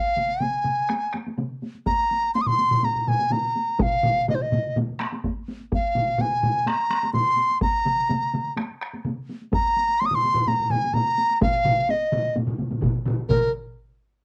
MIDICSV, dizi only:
0, 0, Header, 1, 2, 480
1, 0, Start_track
1, 0, Tempo, 481541
1, 1859, Time_signature, 4, 2, 24, 8
1, 7604, Tempo, 471328
1, 14345, End_track
2, 0, Start_track
2, 0, Title_t, "Dizi"
2, 0, Program_c, 0, 73
2, 0, Note_on_c, 0, 77, 88
2, 420, Note_on_c, 0, 80, 72
2, 435, Note_off_c, 0, 77, 0
2, 1140, Note_off_c, 0, 80, 0
2, 1858, Note_on_c, 0, 82, 93
2, 2307, Note_off_c, 0, 82, 0
2, 2339, Note_on_c, 0, 84, 92
2, 2406, Note_on_c, 0, 87, 75
2, 2421, Note_off_c, 0, 84, 0
2, 2463, Note_on_c, 0, 84, 106
2, 2478, Note_off_c, 0, 87, 0
2, 2836, Note_on_c, 0, 82, 85
2, 2851, Note_off_c, 0, 84, 0
2, 3073, Note_on_c, 0, 80, 82
2, 3087, Note_off_c, 0, 82, 0
2, 3309, Note_on_c, 0, 82, 88
2, 3324, Note_off_c, 0, 80, 0
2, 3804, Note_on_c, 0, 77, 91
2, 3819, Note_off_c, 0, 82, 0
2, 4274, Note_off_c, 0, 77, 0
2, 4279, Note_on_c, 0, 75, 68
2, 4335, Note_on_c, 0, 72, 53
2, 4350, Note_off_c, 0, 75, 0
2, 4405, Note_on_c, 0, 75, 64
2, 4420, Note_off_c, 0, 72, 0
2, 4750, Note_off_c, 0, 75, 0
2, 5728, Note_on_c, 0, 77, 78
2, 6191, Note_on_c, 0, 80, 77
2, 6206, Note_off_c, 0, 77, 0
2, 6654, Note_on_c, 0, 82, 81
2, 6669, Note_off_c, 0, 80, 0
2, 7105, Note_off_c, 0, 82, 0
2, 7111, Note_on_c, 0, 84, 102
2, 7560, Note_off_c, 0, 84, 0
2, 7600, Note_on_c, 0, 82, 92
2, 8529, Note_off_c, 0, 82, 0
2, 9553, Note_on_c, 0, 82, 100
2, 10019, Note_on_c, 0, 84, 105
2, 10034, Note_off_c, 0, 82, 0
2, 10078, Note_on_c, 0, 87, 85
2, 10093, Note_off_c, 0, 84, 0
2, 10172, Note_on_c, 0, 84, 107
2, 10188, Note_off_c, 0, 87, 0
2, 10509, Note_on_c, 0, 82, 93
2, 10524, Note_off_c, 0, 84, 0
2, 10742, Note_on_c, 0, 80, 92
2, 10757, Note_off_c, 0, 82, 0
2, 10976, Note_on_c, 0, 82, 97
2, 10992, Note_off_c, 0, 80, 0
2, 11458, Note_off_c, 0, 82, 0
2, 11469, Note_on_c, 0, 77, 103
2, 11959, Note_on_c, 0, 75, 82
2, 11974, Note_off_c, 0, 77, 0
2, 12427, Note_off_c, 0, 75, 0
2, 13367, Note_on_c, 0, 70, 87
2, 13590, Note_off_c, 0, 70, 0
2, 14345, End_track
0, 0, End_of_file